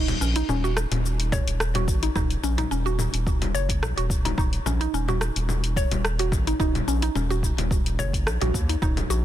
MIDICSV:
0, 0, Header, 1, 4, 480
1, 0, Start_track
1, 0, Key_signature, -6, "minor"
1, 0, Tempo, 555556
1, 1863, Time_signature, 4, 2, 24, 8
1, 7991, End_track
2, 0, Start_track
2, 0, Title_t, "Synth pluck"
2, 0, Program_c, 0, 84
2, 182, Note_on_c, 0, 61, 68
2, 297, Note_off_c, 0, 61, 0
2, 310, Note_on_c, 0, 63, 97
2, 417, Note_off_c, 0, 63, 0
2, 426, Note_on_c, 0, 61, 76
2, 545, Note_off_c, 0, 61, 0
2, 553, Note_on_c, 0, 66, 75
2, 658, Note_off_c, 0, 66, 0
2, 1143, Note_on_c, 0, 73, 103
2, 1264, Note_off_c, 0, 73, 0
2, 1516, Note_on_c, 0, 66, 74
2, 1620, Note_off_c, 0, 66, 0
2, 1751, Note_on_c, 0, 63, 73
2, 1815, Note_off_c, 0, 63, 0
2, 1864, Note_on_c, 0, 63, 97
2, 1985, Note_off_c, 0, 63, 0
2, 2104, Note_on_c, 0, 61, 68
2, 2218, Note_off_c, 0, 61, 0
2, 2229, Note_on_c, 0, 63, 99
2, 2336, Note_off_c, 0, 63, 0
2, 2343, Note_on_c, 0, 61, 80
2, 2464, Note_off_c, 0, 61, 0
2, 2469, Note_on_c, 0, 66, 74
2, 2576, Note_off_c, 0, 66, 0
2, 3063, Note_on_c, 0, 73, 102
2, 3184, Note_off_c, 0, 73, 0
2, 3433, Note_on_c, 0, 66, 79
2, 3538, Note_off_c, 0, 66, 0
2, 3673, Note_on_c, 0, 63, 73
2, 3735, Note_off_c, 0, 63, 0
2, 3784, Note_on_c, 0, 63, 96
2, 3904, Note_off_c, 0, 63, 0
2, 4027, Note_on_c, 0, 61, 67
2, 4140, Note_off_c, 0, 61, 0
2, 4153, Note_on_c, 0, 63, 100
2, 4258, Note_off_c, 0, 63, 0
2, 4269, Note_on_c, 0, 61, 79
2, 4387, Note_off_c, 0, 61, 0
2, 4394, Note_on_c, 0, 66, 77
2, 4499, Note_off_c, 0, 66, 0
2, 4984, Note_on_c, 0, 73, 102
2, 5105, Note_off_c, 0, 73, 0
2, 5352, Note_on_c, 0, 66, 75
2, 5458, Note_off_c, 0, 66, 0
2, 5592, Note_on_c, 0, 63, 74
2, 5655, Note_off_c, 0, 63, 0
2, 5702, Note_on_c, 0, 63, 96
2, 5824, Note_off_c, 0, 63, 0
2, 5942, Note_on_c, 0, 61, 71
2, 6057, Note_off_c, 0, 61, 0
2, 6070, Note_on_c, 0, 63, 99
2, 6177, Note_off_c, 0, 63, 0
2, 6181, Note_on_c, 0, 61, 82
2, 6303, Note_off_c, 0, 61, 0
2, 6311, Note_on_c, 0, 66, 76
2, 6417, Note_off_c, 0, 66, 0
2, 6902, Note_on_c, 0, 73, 104
2, 7024, Note_off_c, 0, 73, 0
2, 7271, Note_on_c, 0, 66, 75
2, 7377, Note_off_c, 0, 66, 0
2, 7511, Note_on_c, 0, 63, 67
2, 7574, Note_off_c, 0, 63, 0
2, 7624, Note_on_c, 0, 63, 100
2, 7745, Note_off_c, 0, 63, 0
2, 7863, Note_on_c, 0, 66, 75
2, 7978, Note_off_c, 0, 66, 0
2, 7991, End_track
3, 0, Start_track
3, 0, Title_t, "Analog synth bass"
3, 0, Program_c, 1, 38
3, 0, Note_on_c, 1, 27, 103
3, 129, Note_off_c, 1, 27, 0
3, 182, Note_on_c, 1, 34, 110
3, 370, Note_off_c, 1, 34, 0
3, 419, Note_on_c, 1, 27, 98
3, 741, Note_off_c, 1, 27, 0
3, 788, Note_on_c, 1, 27, 107
3, 1222, Note_off_c, 1, 27, 0
3, 1269, Note_on_c, 1, 27, 84
3, 1623, Note_on_c, 1, 32, 101
3, 1636, Note_off_c, 1, 27, 0
3, 1810, Note_off_c, 1, 32, 0
3, 1861, Note_on_c, 1, 27, 104
3, 2049, Note_off_c, 1, 27, 0
3, 2102, Note_on_c, 1, 34, 103
3, 2290, Note_off_c, 1, 34, 0
3, 2343, Note_on_c, 1, 27, 96
3, 2663, Note_off_c, 1, 27, 0
3, 2709, Note_on_c, 1, 27, 102
3, 3056, Note_off_c, 1, 27, 0
3, 3062, Note_on_c, 1, 30, 99
3, 3303, Note_on_c, 1, 34, 94
3, 3316, Note_off_c, 1, 30, 0
3, 3401, Note_off_c, 1, 34, 0
3, 3433, Note_on_c, 1, 27, 78
3, 3742, Note_off_c, 1, 27, 0
3, 3781, Note_on_c, 1, 27, 95
3, 3970, Note_off_c, 1, 27, 0
3, 4024, Note_on_c, 1, 34, 106
3, 4211, Note_off_c, 1, 34, 0
3, 4263, Note_on_c, 1, 27, 92
3, 4583, Note_off_c, 1, 27, 0
3, 4632, Note_on_c, 1, 27, 107
3, 5063, Note_off_c, 1, 27, 0
3, 5109, Note_on_c, 1, 27, 85
3, 5459, Note_on_c, 1, 32, 106
3, 5472, Note_off_c, 1, 27, 0
3, 5648, Note_off_c, 1, 32, 0
3, 5699, Note_on_c, 1, 27, 96
3, 5888, Note_off_c, 1, 27, 0
3, 5940, Note_on_c, 1, 34, 110
3, 6129, Note_off_c, 1, 34, 0
3, 6178, Note_on_c, 1, 27, 96
3, 6500, Note_off_c, 1, 27, 0
3, 6545, Note_on_c, 1, 27, 114
3, 6899, Note_off_c, 1, 27, 0
3, 6904, Note_on_c, 1, 30, 98
3, 7144, Note_on_c, 1, 34, 104
3, 7157, Note_off_c, 1, 30, 0
3, 7241, Note_off_c, 1, 34, 0
3, 7273, Note_on_c, 1, 34, 98
3, 7358, Note_off_c, 1, 34, 0
3, 7380, Note_on_c, 1, 39, 90
3, 7569, Note_off_c, 1, 39, 0
3, 7620, Note_on_c, 1, 27, 100
3, 7809, Note_off_c, 1, 27, 0
3, 7860, Note_on_c, 1, 34, 104
3, 7991, Note_off_c, 1, 34, 0
3, 7991, End_track
4, 0, Start_track
4, 0, Title_t, "Drums"
4, 71, Note_on_c, 9, 42, 31
4, 71, Note_on_c, 9, 64, 78
4, 77, Note_on_c, 9, 69, 21
4, 158, Note_off_c, 9, 42, 0
4, 158, Note_off_c, 9, 64, 0
4, 163, Note_off_c, 9, 69, 0
4, 188, Note_on_c, 9, 69, 70
4, 274, Note_off_c, 9, 69, 0
4, 308, Note_on_c, 9, 42, 59
4, 314, Note_on_c, 9, 69, 36
4, 395, Note_off_c, 9, 42, 0
4, 400, Note_off_c, 9, 69, 0
4, 423, Note_on_c, 9, 64, 74
4, 428, Note_on_c, 9, 69, 42
4, 509, Note_off_c, 9, 64, 0
4, 514, Note_off_c, 9, 69, 0
4, 557, Note_on_c, 9, 69, 22
4, 643, Note_off_c, 9, 69, 0
4, 662, Note_on_c, 9, 37, 86
4, 668, Note_on_c, 9, 69, 78
4, 749, Note_off_c, 9, 37, 0
4, 754, Note_off_c, 9, 69, 0
4, 791, Note_on_c, 9, 42, 54
4, 791, Note_on_c, 9, 64, 76
4, 797, Note_on_c, 9, 69, 31
4, 878, Note_off_c, 9, 42, 0
4, 878, Note_off_c, 9, 64, 0
4, 883, Note_off_c, 9, 69, 0
4, 913, Note_on_c, 9, 69, 45
4, 999, Note_off_c, 9, 69, 0
4, 1034, Note_on_c, 9, 42, 46
4, 1039, Note_on_c, 9, 69, 22
4, 1120, Note_off_c, 9, 42, 0
4, 1125, Note_off_c, 9, 69, 0
4, 1142, Note_on_c, 9, 36, 110
4, 1145, Note_on_c, 9, 64, 82
4, 1150, Note_on_c, 9, 69, 80
4, 1229, Note_off_c, 9, 36, 0
4, 1231, Note_off_c, 9, 64, 0
4, 1236, Note_off_c, 9, 69, 0
4, 1274, Note_on_c, 9, 42, 64
4, 1280, Note_on_c, 9, 69, 34
4, 1361, Note_off_c, 9, 42, 0
4, 1366, Note_off_c, 9, 69, 0
4, 1384, Note_on_c, 9, 37, 79
4, 1390, Note_on_c, 9, 69, 46
4, 1471, Note_off_c, 9, 37, 0
4, 1476, Note_off_c, 9, 69, 0
4, 1511, Note_on_c, 9, 42, 48
4, 1511, Note_on_c, 9, 64, 83
4, 1517, Note_on_c, 9, 69, 23
4, 1598, Note_off_c, 9, 42, 0
4, 1598, Note_off_c, 9, 64, 0
4, 1603, Note_off_c, 9, 69, 0
4, 1623, Note_on_c, 9, 36, 102
4, 1627, Note_on_c, 9, 69, 76
4, 1709, Note_off_c, 9, 36, 0
4, 1713, Note_off_c, 9, 69, 0
4, 1751, Note_on_c, 9, 42, 58
4, 1757, Note_on_c, 9, 69, 32
4, 1838, Note_off_c, 9, 42, 0
4, 1843, Note_off_c, 9, 69, 0
4, 1862, Note_on_c, 9, 36, 127
4, 1862, Note_on_c, 9, 64, 74
4, 1868, Note_on_c, 9, 69, 46
4, 1949, Note_off_c, 9, 36, 0
4, 1949, Note_off_c, 9, 64, 0
4, 1954, Note_off_c, 9, 69, 0
4, 1991, Note_on_c, 9, 42, 31
4, 1996, Note_on_c, 9, 69, 24
4, 2077, Note_off_c, 9, 42, 0
4, 2083, Note_off_c, 9, 69, 0
4, 2108, Note_on_c, 9, 69, 76
4, 2195, Note_off_c, 9, 69, 0
4, 2231, Note_on_c, 9, 42, 57
4, 2231, Note_on_c, 9, 64, 81
4, 2236, Note_on_c, 9, 69, 36
4, 2317, Note_off_c, 9, 42, 0
4, 2317, Note_off_c, 9, 64, 0
4, 2322, Note_off_c, 9, 69, 0
4, 2348, Note_on_c, 9, 69, 43
4, 2434, Note_off_c, 9, 69, 0
4, 2475, Note_on_c, 9, 69, 23
4, 2561, Note_off_c, 9, 69, 0
4, 2581, Note_on_c, 9, 64, 72
4, 2586, Note_on_c, 9, 69, 78
4, 2667, Note_off_c, 9, 64, 0
4, 2673, Note_off_c, 9, 69, 0
4, 2710, Note_on_c, 9, 42, 54
4, 2715, Note_on_c, 9, 69, 35
4, 2796, Note_off_c, 9, 42, 0
4, 2801, Note_off_c, 9, 69, 0
4, 2822, Note_on_c, 9, 36, 106
4, 2827, Note_on_c, 9, 69, 45
4, 2908, Note_off_c, 9, 36, 0
4, 2913, Note_off_c, 9, 69, 0
4, 2952, Note_on_c, 9, 42, 42
4, 2952, Note_on_c, 9, 64, 75
4, 2958, Note_on_c, 9, 69, 22
4, 3039, Note_off_c, 9, 42, 0
4, 3039, Note_off_c, 9, 64, 0
4, 3044, Note_off_c, 9, 69, 0
4, 3069, Note_on_c, 9, 69, 80
4, 3155, Note_off_c, 9, 69, 0
4, 3189, Note_on_c, 9, 36, 65
4, 3193, Note_on_c, 9, 42, 61
4, 3198, Note_on_c, 9, 69, 37
4, 3275, Note_off_c, 9, 36, 0
4, 3279, Note_off_c, 9, 42, 0
4, 3285, Note_off_c, 9, 69, 0
4, 3307, Note_on_c, 9, 37, 80
4, 3307, Note_on_c, 9, 64, 78
4, 3312, Note_on_c, 9, 69, 47
4, 3393, Note_off_c, 9, 37, 0
4, 3393, Note_off_c, 9, 64, 0
4, 3398, Note_off_c, 9, 69, 0
4, 3435, Note_on_c, 9, 42, 47
4, 3440, Note_on_c, 9, 69, 23
4, 3521, Note_off_c, 9, 42, 0
4, 3527, Note_off_c, 9, 69, 0
4, 3541, Note_on_c, 9, 36, 106
4, 3550, Note_on_c, 9, 69, 81
4, 3628, Note_off_c, 9, 36, 0
4, 3636, Note_off_c, 9, 69, 0
4, 3675, Note_on_c, 9, 42, 58
4, 3675, Note_on_c, 9, 64, 80
4, 3681, Note_on_c, 9, 69, 34
4, 3762, Note_off_c, 9, 42, 0
4, 3762, Note_off_c, 9, 64, 0
4, 3767, Note_off_c, 9, 69, 0
4, 3782, Note_on_c, 9, 36, 127
4, 3794, Note_on_c, 9, 69, 46
4, 3868, Note_off_c, 9, 36, 0
4, 3880, Note_off_c, 9, 69, 0
4, 3912, Note_on_c, 9, 42, 29
4, 3918, Note_on_c, 9, 69, 23
4, 3999, Note_off_c, 9, 42, 0
4, 4004, Note_off_c, 9, 69, 0
4, 4026, Note_on_c, 9, 64, 65
4, 4032, Note_on_c, 9, 69, 82
4, 4113, Note_off_c, 9, 64, 0
4, 4118, Note_off_c, 9, 69, 0
4, 4155, Note_on_c, 9, 42, 53
4, 4160, Note_on_c, 9, 69, 35
4, 4241, Note_off_c, 9, 42, 0
4, 4247, Note_off_c, 9, 69, 0
4, 4271, Note_on_c, 9, 69, 47
4, 4357, Note_off_c, 9, 69, 0
4, 4392, Note_on_c, 9, 64, 71
4, 4398, Note_on_c, 9, 69, 23
4, 4479, Note_off_c, 9, 64, 0
4, 4484, Note_off_c, 9, 69, 0
4, 4502, Note_on_c, 9, 37, 83
4, 4507, Note_on_c, 9, 69, 85
4, 4588, Note_off_c, 9, 37, 0
4, 4594, Note_off_c, 9, 69, 0
4, 4633, Note_on_c, 9, 42, 57
4, 4638, Note_on_c, 9, 69, 37
4, 4719, Note_off_c, 9, 42, 0
4, 4725, Note_off_c, 9, 69, 0
4, 4741, Note_on_c, 9, 64, 71
4, 4747, Note_on_c, 9, 69, 47
4, 4828, Note_off_c, 9, 64, 0
4, 4833, Note_off_c, 9, 69, 0
4, 4870, Note_on_c, 9, 42, 46
4, 4876, Note_on_c, 9, 69, 24
4, 4957, Note_off_c, 9, 42, 0
4, 4962, Note_off_c, 9, 69, 0
4, 4980, Note_on_c, 9, 36, 115
4, 4989, Note_on_c, 9, 69, 86
4, 5067, Note_off_c, 9, 36, 0
4, 5075, Note_off_c, 9, 69, 0
4, 5110, Note_on_c, 9, 42, 58
4, 5110, Note_on_c, 9, 64, 75
4, 5116, Note_on_c, 9, 69, 36
4, 5197, Note_off_c, 9, 42, 0
4, 5197, Note_off_c, 9, 64, 0
4, 5202, Note_off_c, 9, 69, 0
4, 5224, Note_on_c, 9, 37, 77
4, 5229, Note_on_c, 9, 69, 46
4, 5310, Note_off_c, 9, 37, 0
4, 5315, Note_off_c, 9, 69, 0
4, 5351, Note_on_c, 9, 42, 46
4, 5357, Note_on_c, 9, 69, 24
4, 5437, Note_off_c, 9, 42, 0
4, 5443, Note_off_c, 9, 69, 0
4, 5460, Note_on_c, 9, 36, 112
4, 5464, Note_on_c, 9, 64, 75
4, 5470, Note_on_c, 9, 69, 85
4, 5547, Note_off_c, 9, 36, 0
4, 5551, Note_off_c, 9, 64, 0
4, 5556, Note_off_c, 9, 69, 0
4, 5593, Note_on_c, 9, 42, 52
4, 5598, Note_on_c, 9, 69, 35
4, 5679, Note_off_c, 9, 42, 0
4, 5684, Note_off_c, 9, 69, 0
4, 5699, Note_on_c, 9, 36, 127
4, 5709, Note_on_c, 9, 69, 44
4, 5786, Note_off_c, 9, 36, 0
4, 5795, Note_off_c, 9, 69, 0
4, 5833, Note_on_c, 9, 42, 28
4, 5833, Note_on_c, 9, 64, 75
4, 5838, Note_on_c, 9, 69, 22
4, 5920, Note_off_c, 9, 42, 0
4, 5920, Note_off_c, 9, 64, 0
4, 5925, Note_off_c, 9, 69, 0
4, 5947, Note_on_c, 9, 69, 76
4, 6034, Note_off_c, 9, 69, 0
4, 6068, Note_on_c, 9, 42, 52
4, 6074, Note_on_c, 9, 69, 36
4, 6155, Note_off_c, 9, 42, 0
4, 6160, Note_off_c, 9, 69, 0
4, 6183, Note_on_c, 9, 64, 74
4, 6188, Note_on_c, 9, 69, 44
4, 6269, Note_off_c, 9, 64, 0
4, 6274, Note_off_c, 9, 69, 0
4, 6315, Note_on_c, 9, 69, 22
4, 6402, Note_off_c, 9, 69, 0
4, 6419, Note_on_c, 9, 36, 63
4, 6429, Note_on_c, 9, 69, 83
4, 6506, Note_off_c, 9, 36, 0
4, 6515, Note_off_c, 9, 69, 0
4, 6552, Note_on_c, 9, 42, 56
4, 6552, Note_on_c, 9, 64, 77
4, 6558, Note_on_c, 9, 69, 34
4, 6639, Note_off_c, 9, 42, 0
4, 6639, Note_off_c, 9, 64, 0
4, 6644, Note_off_c, 9, 69, 0
4, 6660, Note_on_c, 9, 36, 119
4, 6668, Note_on_c, 9, 69, 46
4, 6746, Note_off_c, 9, 36, 0
4, 6754, Note_off_c, 9, 69, 0
4, 6793, Note_on_c, 9, 42, 39
4, 6798, Note_on_c, 9, 69, 23
4, 6879, Note_off_c, 9, 42, 0
4, 6884, Note_off_c, 9, 69, 0
4, 6903, Note_on_c, 9, 64, 73
4, 6908, Note_on_c, 9, 69, 85
4, 6989, Note_off_c, 9, 64, 0
4, 6994, Note_off_c, 9, 69, 0
4, 7028, Note_on_c, 9, 36, 63
4, 7034, Note_on_c, 9, 42, 55
4, 7040, Note_on_c, 9, 69, 36
4, 7115, Note_off_c, 9, 36, 0
4, 7120, Note_off_c, 9, 42, 0
4, 7126, Note_off_c, 9, 69, 0
4, 7143, Note_on_c, 9, 37, 73
4, 7149, Note_on_c, 9, 69, 46
4, 7230, Note_off_c, 9, 37, 0
4, 7235, Note_off_c, 9, 69, 0
4, 7270, Note_on_c, 9, 42, 43
4, 7270, Note_on_c, 9, 64, 81
4, 7276, Note_on_c, 9, 69, 23
4, 7357, Note_off_c, 9, 42, 0
4, 7357, Note_off_c, 9, 64, 0
4, 7362, Note_off_c, 9, 69, 0
4, 7381, Note_on_c, 9, 36, 107
4, 7387, Note_on_c, 9, 69, 76
4, 7467, Note_off_c, 9, 36, 0
4, 7474, Note_off_c, 9, 69, 0
4, 7512, Note_on_c, 9, 42, 55
4, 7518, Note_on_c, 9, 69, 33
4, 7599, Note_off_c, 9, 42, 0
4, 7604, Note_off_c, 9, 69, 0
4, 7621, Note_on_c, 9, 36, 127
4, 7628, Note_on_c, 9, 69, 43
4, 7707, Note_off_c, 9, 36, 0
4, 7714, Note_off_c, 9, 69, 0
4, 7751, Note_on_c, 9, 42, 29
4, 7751, Note_on_c, 9, 64, 79
4, 7756, Note_on_c, 9, 69, 22
4, 7837, Note_off_c, 9, 42, 0
4, 7837, Note_off_c, 9, 64, 0
4, 7843, Note_off_c, 9, 69, 0
4, 7867, Note_on_c, 9, 69, 73
4, 7954, Note_off_c, 9, 69, 0
4, 7991, End_track
0, 0, End_of_file